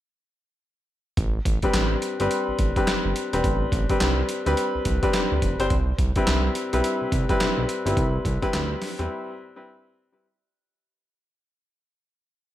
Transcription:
1.17 analog synth bass A1, kick, closed hi-hat
1.45 analog synth bass A1, kick, closed hi-hat
1.62 grand piano G3 C4 D4 B4, kick, closed hi-hat
1.74 analog synth bass A1, snare, clap, closed hi-hat
2.02 closed hi-hat
2.20 analog synth bass G1, grand piano G3 C4 D4 B4, closed hi-hat
2.31 closed hi-hat
2.48 analog synth bass A1
2.59 analog synth bass A1, kick, closed hi-hat
2.76 grand piano G3 C4 D4 B4, kick, closed hi-hat
2.87 analog synth bass G1, snare, clap, closed hi-hat
3.05 analog synth bass G1
3.16 closed hi-hat
3.33 analog synth bass E1, grand piano G3 C4 D4 B4, closed hi-hat
3.44 analog synth bass A1, kick, closed hi-hat
3.72 analog synth bass A1, kick, closed hi-hat
3.89 grand piano G3 C4 D4 B4, kick, closed hi-hat
4.01 analog synth bass C2, snare, clap, closed hi-hat
4.29 closed hi-hat
4.46 analog synth bass D2, grand piano G3 C4 D4 B4, closed hi-hat
4.57 closed hi-hat
4.75 analog synth bass C2
4.85 analog synth bass C2, kick, closed hi-hat
5.02 grand piano G3 C4 D4 B4, kick, closed hi-hat
5.14 snare, clap, closed hi-hat
5.32 analog synth bass D2
5.42 analog synth bass F1, kick, closed hi-hat
5.59 analog synth bass G1, grand piano G3 C4 D4 C5, closed hi-hat
5.70 analog synth bass C2, kick, closed hi-hat
5.99 analog synth bass C2, kick, closed hi-hat
6.16 grand piano G3 C4 E4 B4, kick, closed hi-hat
6.27 analog synth bass C2, snare, clap, closed hi-hat
6.55 closed hi-hat
6.73 analog synth bass B1, grand piano G3 C4 E4 B4, closed hi-hat
6.84 closed hi-hat
7.01 analog synth bass C2
7.12 analog synth bass C2, kick, closed hi-hat
7.29 grand piano G3 C4 E4 B4, kick, closed hi-hat
7.40 analog synth bass B1, snare, clap, closed hi-hat
7.58 analog synth bass B1
7.69 closed hi-hat
7.86 analog synth bass G1, grand piano G3 C4 E4 B4, closed hi-hat
7.97 analog synth bass C2, kick, closed hi-hat
8.25 analog synth bass C2, kick, closed hi-hat
8.42 grand piano G3 C4 E4 B4, kick, closed hi-hat
8.53 analog synth bass D2, snare, clap, closed hi-hat
8.82 snare, open hi-hat
8.99 analog synth bass E2, grand piano G3 C4 E4 B4, closed hi-hat
9.56 grand piano G3 C4 E4 B4
10.12 grand piano G3 C4 E4 B4

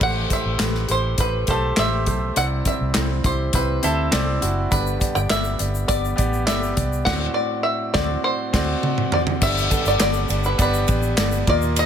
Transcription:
0.01 fingered electric bass A1, grand piano A2 E3 A3 G4 C5, five-string banjo F#5, kick, crash
0.30 grand piano A3 G4 C5, five-string banjo E5, kick, closed hi-hat
0.45 fingered electric bass A1
0.59 fingered electric bass A1, grand piano A3 G4 B4, snare, clap, closed hi-hat
0.75 snare
0.89 fingered electric bass A1, grand piano A3 G4 C5, five-string banjo C5, closed hi-hat
1.18 fingered electric bass A1, grand piano A3 G4 C5, five-string banjo B4, kick, closed hi-hat
1.47 fingered electric bass B1, grand piano A3 G4 C5, five-string banjo A4, kick, closed hi-hat
1.76 fingered electric bass A1, grand piano A3 G4 C5, five-string banjo E5, snare, clap, closed hi-hat
2.06 fingered electric bass B1, grand piano A3 G4 C5, kick, closed hi-hat
2.36 fingered electric bass C2, grand piano C3 G3 C4 E4 D5, five-string banjo F#5, closed hi-hat
2.65 grand piano C4 E4 D5, five-string banjo E5, kick, closed hi-hat
2.81 fingered electric bass C2
2.94 fingered electric bass C2, grand piano C4 E4 C5, snare, clap, closed hi-hat
3.24 fingered electric bass C2, grand piano C4 E4 G4, five-string banjo C5, kick, closed hi-hat
3.53 fingered electric bass C2, grand piano C4 E4 C5, five-string banjo B4, kick, closed hi-hat
3.83 fingered electric bass D2, grand piano C4 E4 E5, five-string banjo A4, closed hi-hat
4.11 fingered electric bass C2, grand piano C4 E4 D5, snare, clap, closed hi-hat
4.41 fingered electric bass F#1, grand piano C4 E4 F#4, closed hi-hat
4.71 fingered electric bass G1, grand piano G2 D3 B3 G4 D5, five-string banjo B4, kick, closed hi-hat, shaker
4.86 shaker
4.99 grand piano B3 G4 D5, kick, closed hi-hat, shaker
5.15 fingered electric bass G1, five-string banjo G5, shaker
5.29 fingered electric bass G1, grand piano B3 G4 D5, five-string banjo E5, snare, clap, closed hi-hat, shaker
5.44 shaker
5.58 fingered electric bass G1, grand piano B3 G4 D5, closed hi-hat, shaker
5.75 shaker
5.87 fingered electric bass G1, grand piano B3 G4 D5, five-string banjo D5, kick, closed hi-hat, shaker
6.05 shaker
6.16 fingered electric bass A1, grand piano B3 G4 D5, kick, closed hi-hat, shaker
6.33 shaker
6.46 fingered electric bass G1, grand piano B3 G4 D5, five-string banjo E5, snare, clap, closed hi-hat, shaker
6.63 shaker
6.76 fingered electric bass C2, grand piano B3 G4 D5, kick, closed hi-hat
6.93 shaker
7.05 fingered electric bass D2, grand piano A2 C4 F#4 D5, five-string banjo F#5, kick, snare, crash
7.34 five-string banjo D5
7.63 five-string banjo E5
7.94 fingered electric bass D2, grand piano C4 F#4 D5, five-string banjo D5, kick, snare
8.24 five-string banjo C5
8.53 fingered electric bass D2, grand piano C4 F#4 D5, kick, snare, crash
8.83 mid tom
8.98 mid tom
9.12 five-string banjo D5, floor tom
9.27 floor tom
9.41 fingered electric bass G1, grand piano G2 D3 B3 G4 D5, five-string banjo E5, kick, crash, shaker
9.58 shaker
9.70 grand piano B3 G4 A4, kick, ride, shaker
9.85 fingered electric bass G1, five-string banjo D5, shaker
10.00 fingered electric bass G1, grand piano B3 G4 D5, five-string banjo D5, snare, clap, ride, shaker
10.13 shaker
10.29 fingered electric bass G1, grand piano B3 G4 D5, ride, shaker
10.44 five-string banjo B4, shaker
10.58 fingered electric bass G1, grand piano B3 G4 D5, five-string banjo B4, kick, ride, shaker
10.74 shaker
10.88 fingered electric bass A1, grand piano B3 G4 D5, kick, ride, shaker
11.02 shaker
11.16 fingered electric bass G1, grand piano B3 G4 D5, snare, clap, ride, shaker
11.32 shaker
11.47 fingered electric bass D#2, grand piano A#2 A#3 F4 D#5, five-string banjo D5, kick, ride
11.62 shaker
11.76 five-string banjo D#5, ride, shaker

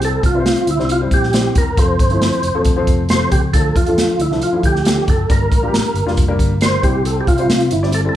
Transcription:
Already playing: fingered electric bass C2, upright piano G3 C4 E4 C5
0.02 tonewheel organ A4, closed hi-hat
0.23 fingered electric bass C2, tonewheel organ F4, kick, closed hi-hat
0.35 upright piano G3 C4 B4 E5
0.40 upright piano C5
0.46 snare, closed hi-hat
0.56 closed hi-hat
0.67 fingered electric bass D2, tonewheel organ E4, closed hi-hat
0.77 fingered electric bass C2, upright piano G3 C4 E4 C5, snare
0.85 tonewheel organ E4
0.89 tonewheel organ F4, closed hi-hat
1.01 upright piano G3 C4 E4 C5
1.11 fingered electric bass A#1, tonewheel organ G4, kick, closed hi-hat
1.23 snare
1.33 upright piano G3 C4 E4 C5, snare, closed hi-hat
1.55 fingered electric bass E1, tonewheel organ A#4, kick, closed hi-hat
1.77 fingered electric bass F1, upright piano F3 A3 C4 A4, tonewheel organ C5, kick, closed hi-hat
1.99 fingered electric bass G1, kick, closed hi-hat
2.10 upright piano F3 A3 C4 E4, closed hi-hat
2.22 snare, closed hi-hat
2.32 closed hi-hat
2.43 fingered electric bass F1, closed hi-hat
2.53 fingered electric bass E1, upright piano F3 A3 C4 A4
2.65 kick, closed hi-hat
2.76 upright piano F3 A3 C4 C5
2.87 fingered electric bass F1, kick, closed hi-hat
3.09 upright piano F3 A3 C4 G4, tonewheel organ C5, snare, closed hi-hat
3.16 upright piano A4
3.32 fingered electric bass C#2, tonewheel organ G4, kick, closed hi-hat
3.53 fingered electric bass D2, upright piano F3 A3 D4 A4, tonewheel organ A4, kick, closed hi-hat
3.76 tonewheel organ F4, kick, closed hi-hat
3.86 upright piano F3 A3 D4 A4, closed hi-hat
3.98 snare, closed hi-hat
4.08 closed hi-hat
4.19 fingered electric bass D2, tonewheel organ E4, closed hi-hat
4.30 fingered electric bass C2, upright piano F3 A3 D4 A4, snare
4.42 tonewheel organ F4, closed hi-hat
4.52 upright piano F3 A3 D4 E4, muted fingered electric bass stroke
4.63 fingered electric bass D2, tonewheel organ G4, kick, closed hi-hat
4.76 snare
4.85 upright piano F3 A3 D4 A4, snare, closed hi-hat
5.08 fingered electric bass F#1, tonewheel organ A4, kick, closed hi-hat
5.29 fingered electric bass G1, upright piano G3 A#3 D4 A#4, tonewheel organ A#4, kick, closed hi-hat
5.51 fingered electric bass A1, kick, closed hi-hat
5.63 upright piano G3 A#3 D4 F4
5.68 upright piano G4
5.74 snare, closed hi-hat
5.85 closed hi-hat
5.94 fingered electric bass G1, closed hi-hat
6.06 upright piano G3 A#3 D4 F4, snare
6.17 kick, closed hi-hat
6.28 upright piano G3 A#3 D4 A#4
6.39 fingered electric bass G1, kick, closed hi-hat
6.61 upright piano G3 A#3 D4 A#4, tonewheel organ C5, snare, closed hi-hat
6.83 fingered electric bass C2, upright piano G3 C4 E4 C5, tonewheel organ G4, kick, closed hi-hat
7.05 tonewheel organ A4, closed hi-hat
7.21 tonewheel organ G4
7.27 fingered electric bass C2, tonewheel organ F4, kick, closed hi-hat
7.38 upright piano G3 C4 C5 E5, closed hi-hat
7.49 fingered electric bass C3, snare, closed hi-hat
7.60 closed hi-hat
7.71 fingered electric bass G1, tonewheel organ E4, closed hi-hat
7.82 upright piano G3 C4 E4 D5, snare
7.92 tonewheel organ A4, closed hi-hat
8.05 upright piano G3 C4 E4 A4
8.09 tonewheel organ A4

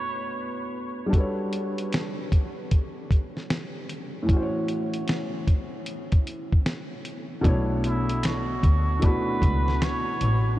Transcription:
Already playing: felt piano B2 A3 D4 E4 C#5, muted trumpet C#5
1.06 felt piano G3 D4
1.12 felt piano F#4 A4, kick, closed hi-hat
1.17 felt piano B4 C#5
1.53 closed hi-hat
1.78 closed hi-hat
1.93 snare, closed hi-hat
2.32 kick, closed hi-hat
2.71 kick, closed hi-hat
3.11 kick, closed hi-hat
3.37 snare
3.50 snare, closed hi-hat
3.89 closed hi-hat
4.23 felt piano A2 E3
4.29 felt piano C#4 F#4, kick, closed hi-hat
4.36 felt piano C5
4.43 felt piano C#5
4.68 closed hi-hat
4.93 closed hi-hat
5.08 snare, closed hi-hat
5.47 kick, closed hi-hat
5.86 closed hi-hat
6.12 kick, closed hi-hat
6.27 closed hi-hat
6.52 kick
6.66 snare, closed hi-hat
7.05 closed hi-hat
7.41 double bass B1, felt piano B2 A3 D4, kick, closed hi-hat
7.46 felt piano E4 C#5
7.84 muted trumpet E4, closed hi-hat
8.09 closed hi-hat
8.23 muted trumpet F#4, finger snap, snare, closed hi-hat
8.63 double bass D2, kick, closed hi-hat
9.00 felt piano B2 A3 D4, kick, closed hi-hat
9.05 felt piano E4 F#4, muted trumpet B4
9.42 double bass C#2, kick, closed hi-hat
9.68 snare
9.82 muted trumpet C#5, finger snap, snare, closed hi-hat
10.21 double bass A1, closed hi-hat

